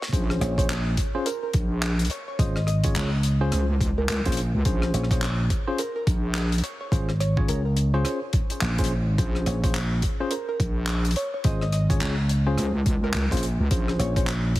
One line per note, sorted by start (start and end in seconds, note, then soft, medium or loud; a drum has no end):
0.01 0.09 C#5 medium
0.01 snare medium
0.13 0.39 A#1 loud
0.13 0.54 C#4 medium
0.13 0.54 F4 medium
0.13 0.54 G#4 medium
0.13 0.54 C5 medium
0.13 kick loud
0.13 closed hi-hat medium
0.30 cross-stick medium
0.41 0.96 A#1 loud
0.41 0.52 C#5 medium
0.41 cross-stick soft
0.41 closed hi-hat medium
0.58 0.71 C#4 medium
0.58 0.71 F4 medium
0.58 0.71 G#4 medium
0.58 0.71 C5 medium
0.58 0.65 C#5 medium
0.58 kick loud
0.58 closed hi-hat medium
0.70 clap loud
0.70 closed hi-hat medium
0.97 kick medium
0.97 closed hi-hat medium
1.15 1.28 C#4 medium
1.15 1.28 F4 medium
1.15 1.28 G#4 medium
1.15 1.28 C5 loud
1.26 1.37 A#4 medium
1.26 closed hi-hat loud
1.43 1.50 A#4 medium
1.53 2.09 A#1 loud
1.53 kick loud
1.53 closed hi-hat medium
1.82 clap loud
1.82 closed hi-hat medium
1.99 closed hi-hat medium
2.05 closed hi-hat medium
2.10 2.22 C#5 medium
2.10 closed hi-hat medium
2.28 2.35 C#5 medium
2.39 2.94 G#1 medium
2.39 2.57 C#4 medium
2.39 2.57 F4 medium
2.39 2.57 G#4 medium
2.39 2.57 C5 medium
2.39 2.50 D#5 loud
2.39 kick loud
2.39 closed hi-hat loud
2.56 2.63 D#5 medium
2.56 cross-stick medium
2.67 3.48 D#5 medium
2.67 cross-stick soft
2.67 closed hi-hat medium
2.84 3.09 C#4 medium
2.84 3.09 F4 medium
2.84 3.09 G#4 medium
2.84 3.09 C#5 loud
2.84 kick loud
2.84 closed hi-hat medium
2.95 3.50 C#2 loud
2.95 clap loud
2.95 closed hi-hat loud
3.23 closed hi-hat medium
3.41 3.66 C#4 medium
3.41 3.66 F4 medium
3.41 3.66 G#4 medium
3.41 3.66 C5 loud
3.52 4.07 C#2 loud
3.52 cross-stick medium
3.52 closed hi-hat medium
3.81 kick loud
3.81 closed hi-hat medium
3.98 4.05 A#4 medium
4.09 4.23 C#2 medium
4.09 4.20 A#4 medium
4.09 clap loud
4.09 closed hi-hat loud
4.26 4.51 A#1 loud
4.26 4.39 C#4 medium
4.26 4.39 F4 medium
4.26 4.39 G#4 medium
4.26 4.39 C5 loud
4.26 kick medium
4.26 closed hi-hat medium
4.32 closed hi-hat medium
4.37 closed hi-hat medium
4.54 4.64 C#2 loud
4.65 4.92 A#1 medium
4.65 5.07 C#4 medium
4.65 5.07 F4 medium
4.65 5.07 G#4 medium
4.65 5.07 C5 medium
4.65 kick loud
4.65 closed hi-hat medium
4.82 cross-stick medium
4.94 5.49 A#1 loud
4.94 5.05 C#5 medium
4.94 cross-stick soft
4.94 closed hi-hat medium
5.04 cross-stick soft
5.11 5.24 C#4 medium
5.11 5.24 F4 medium
5.11 5.24 G#4 medium
5.11 5.24 C5 medium
5.11 5.18 C#5 medium
5.11 kick loud
5.11 cross-stick soft
5.11 closed hi-hat medium
5.22 clap loud
5.22 closed hi-hat medium
5.50 kick medium
5.50 closed hi-hat medium
5.67 5.81 C#4 medium
5.67 5.81 F4 medium
5.67 5.81 G#4 medium
5.67 5.81 C5 loud
5.78 5.90 A#4 medium
5.78 closed hi-hat loud
5.96 6.03 A#4 medium
6.07 6.62 A#1 loud
6.07 kick loud
6.07 closed hi-hat medium
6.35 clap loud
6.35 closed hi-hat medium
6.52 closed hi-hat medium
6.58 closed hi-hat medium
6.64 6.74 C#5 medium
6.64 closed hi-hat medium
6.81 6.88 C#5 medium
6.92 7.47 G#1 medium
6.92 7.10 C#4 medium
6.92 7.10 F4 medium
6.92 7.10 G#4 medium
6.92 7.10 C5 loud
6.92 kick loud
6.92 closed hi-hat medium
7.09 cross-stick soft
7.20 7.46 C#5 medium
7.20 cross-stick soft
7.20 closed hi-hat medium
7.37 7.62 C#4 medium
7.37 7.62 F4 medium
7.37 7.62 G#4 medium
7.37 7.62 C#5 loud
7.37 kick loud
7.48 8.03 C#2 loud
7.48 7.59 A#4 medium
7.48 closed hi-hat medium
7.65 7.73 A#4 medium
7.77 closed hi-hat medium
7.94 8.19 C#4 medium
7.94 8.19 F4 medium
7.94 8.19 G#4 medium
7.94 8.19 C5 loud
7.94 8.01 C#5 medium
8.05 8.16 C#5 medium
8.05 cross-stick medium
8.05 closed hi-hat medium
8.33 kick loud
8.33 closed hi-hat medium
8.50 closed hi-hat medium
8.61 9.16 A#1 medium
8.61 clap loud
8.61 closed hi-hat loud
8.78 8.92 C#4 medium
8.78 8.92 F4 medium
8.78 8.92 G#4 medium
8.78 8.92 C5 loud
8.78 kick medium
8.78 closed hi-hat medium
8.84 closed hi-hat medium
9.18 9.45 A#1 loud
9.18 9.60 C#4 medium
9.18 9.60 F4 medium
9.18 9.60 G#4 medium
9.18 9.60 C5 medium
9.18 kick loud
9.18 closed hi-hat medium
9.35 cross-stick soft
9.46 10.01 A#1 loud
9.46 9.57 C#5 medium
9.46 cross-stick soft
9.46 closed hi-hat medium
9.64 9.77 C#4 medium
9.64 9.77 F4 medium
9.64 9.77 G#4 medium
9.64 9.77 C5 medium
9.64 9.71 C#5 medium
9.64 kick loud
9.64 closed hi-hat medium
9.74 clap loud
9.74 closed hi-hat medium
10.02 kick medium
10.02 closed hi-hat medium
10.20 10.34 C#4 medium
10.20 10.34 F4 medium
10.20 10.34 G#4 medium
10.20 10.34 C5 loud
10.31 10.42 A#4 medium
10.31 closed hi-hat medium
10.49 10.56 A#4 medium
10.60 11.15 A#1 loud
10.60 kick loud
10.60 closed hi-hat medium
10.87 clap loud
10.87 closed hi-hat medium
11.05 closed hi-hat medium
11.11 closed hi-hat medium
11.16 11.27 C#5 medium
11.16 closed hi-hat medium
11.34 11.41 C#5 medium
11.44 11.99 G#1 loud
11.44 11.63 C#4 medium
11.44 11.63 F4 medium
11.44 11.63 G#4 medium
11.44 11.63 C5 medium
11.44 11.56 D#5 medium
11.44 kick loud
11.44 closed hi-hat medium
11.61 11.69 D#5 medium
11.61 cross-stick soft
11.72 12.54 D#5 medium
11.72 cross-stick soft
11.72 closed hi-hat medium
11.90 12.15 C#4 medium
11.90 12.15 F4 medium
11.90 12.15 G#4 medium
11.90 12.15 C#5 loud
11.90 kick loud
11.90 closed hi-hat medium
12.00 12.56 C#2 loud
12.00 clap loud
12.00 closed hi-hat medium
12.29 closed hi-hat medium
12.47 12.71 C#4 medium
12.47 12.71 F4 medium
12.47 12.71 G#4 medium
12.47 12.71 C5 loud
12.58 13.13 C#2 loud
12.58 cross-stick medium
12.58 closed hi-hat medium
12.86 kick loud
12.86 closed hi-hat medium
13.04 13.11 A#4 medium
13.14 13.29 C#2 medium
13.14 13.26 A#4 medium
13.14 clap loud
13.14 closed hi-hat medium
13.31 13.57 A#1 loud
13.31 13.45 C#4 medium
13.31 13.45 F4 medium
13.31 13.45 G#4 medium
13.31 13.45 C5 loud
13.31 kick medium
13.31 closed hi-hat medium
13.37 closed hi-hat medium
13.43 closed hi-hat medium
13.59 13.69 C#2 loud
13.71 13.98 A#1 loud
13.71 14.12 C#4 medium
13.71 14.12 F4 medium
13.71 14.12 G#4 medium
13.71 14.12 C5 medium
13.71 kick loud
13.71 closed hi-hat medium
13.88 cross-stick soft
13.99 14.54 A#1 loud
13.99 14.10 C#5 medium
13.99 cross-stick soft
13.99 closed hi-hat medium
14.16 14.30 C#4 medium
14.16 14.30 F4 medium
14.16 14.30 G#4 medium
14.16 14.30 C5 medium
14.16 14.24 C#5 medium
14.16 kick loud
14.16 closed hi-hat medium
14.27 clap loud
14.27 closed hi-hat medium
14.56 kick medium
14.56 closed hi-hat medium